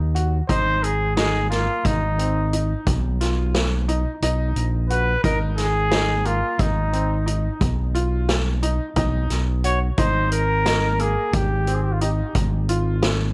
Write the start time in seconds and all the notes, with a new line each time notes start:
Already playing: D#2
0.15 F#4, closed hi-hat
0.49 G#1 D#4 C5, kick, closed hi-hat
0.83 G#4, closed hi-hat
1.16 D#4 G#4, snare, closed hi-hat
1.50 A#3 F4, snare, closed hi-hat
1.85 G#1 D#4, kick, closed hi-hat
2.18 C4, closed hi-hat
2.53 D#4, closed hi-hat
2.87 B1, kick, closed hi-hat
3.21 F4, snare, closed hi-hat
3.55 snare, closed hi-hat
3.88 D#4, closed hi-hat
4.22 B1 D#4, closed hi-hat
4.56 A#1, closed hi-hat
4.90 F#4 B4, closed hi-hat
5.23 G#1 D#4 A#4, kick, closed hi-hat
5.58 G#4, snare, closed hi-hat
5.91 D#4, snare, closed hi-hat
6.25 A#3 F4, closed hi-hat
6.59 G#1 D#4, kick, closed hi-hat
6.93 C4, closed hi-hat
7.26 D#4, closed hi-hat
7.61 B1, kick, closed hi-hat
7.95 F4, closed hi-hat
8.29 snare, closed hi-hat
8.63 D#4, closed hi-hat
8.96 B1 D#4, kick, closed hi-hat
9.30 B1, snare, closed hi-hat
9.64 F#4 C#5, closed hi-hat
9.98 G#1 D#4 C5, kick, closed hi-hat
10.32 A#4, closed hi-hat
10.66 D#4, snare, closed hi-hat
10.99 A#3 G#4, closed hi-hat
11.33 G#1 G4, kick, closed hi-hat
11.67 C4, closed hi-hat
11.74 G#4
11.83 G4
11.92 F4
12.01 D#4 G4, closed hi-hat
12.35 G#1, kick, closed hi-hat
12.69 F4, closed hi-hat
13.03 snare, closed hi-hat